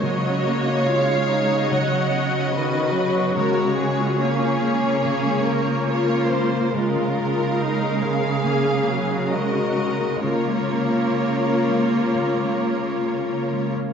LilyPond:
<<
  \new Staff \with { instrumentName = "Violin section" } { \time 4/4 \key des \major \tempo 4 = 71 << { ees''4 f''4 ees''2 | des''4 des''2 bes'4~ | bes'4 f''2 ees''4 | des''1 | } \\ { des''2. ces''4 | bes'8 aes'4. aes'8 bes'8 des''8 c''8 | bes'2 aes'4 bes'4 | bes'1 | } >> }
  \new Staff \with { instrumentName = "Harp" } { \time 4/4 \key des \major des16 des'16 ces'16 ees'16 ges'16 ees'16 des'16 ces'16 des16 des'16 ces'16 ees'16 ges'16 ees'16 des'16 ces'16 | des16 aes16 bes16 f'16 aes'16 f'16 aes16 bes16 des16 aes16 bes16 f'16 aes'16 f'16 aes16 bes16 | des16 aes16 bes16 ees'16 aes'16 ees'16 aes16 bes16 des16 aes16 bes16 ees'16 aes'16 ees'16 aes16 bes16 | des16 aes16 bes16 f'16 aes'16 f'16 aes16 bes16 des16 aes16 bes16 f'16 aes'16 f'16 aes16 bes16 | }
  \new Staff \with { instrumentName = "Viola section" } { \time 4/4 \key des \major << { ges'4 f'8 ees'8 ges''4 ges'4~ | ges'4 des'2 f'4 | f'4 ees'8 aes'4. ges'4 | f'1 | } \\ { ges8 bes8 aes4 ges8 ges8 ees8 ges8 | aes4 bes8 bes2~ bes8 | aes8 aes4. bes8 ges8 aes8 aes8 | bes1 | } >> }
  \new Staff \with { instrumentName = "Cello section" } { \clef bass \time 4/4 \key des \major des1 | des1 | des1 | des1 | }
>>